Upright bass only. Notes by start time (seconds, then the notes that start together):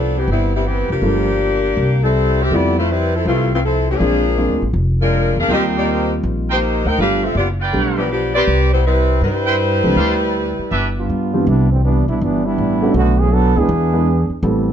Already playing: C2
0.28 G1
0.90 F1
1.02 G1
1.77 C2
2.51 F2
3.25 C2
4.00 A#1
4.49 D2
4.62 A1
4.73 F1
5.36 E2
5.48 D#2
6.23 A#1
6.85 D2
6.99 G1
7.35 F#1
7.74 B1
8.47 C2
9.21 G2
9.84 C#2
9.96 D2
10.59 muted upright bass stroke
10.71 G1
11.09 G2
11.47 C2
12.08 B1
12.21 G1
12.58 A1
12.94 B1
13.56 D2
13.69 E2
14.30 muted upright bass stroke
14.43 A1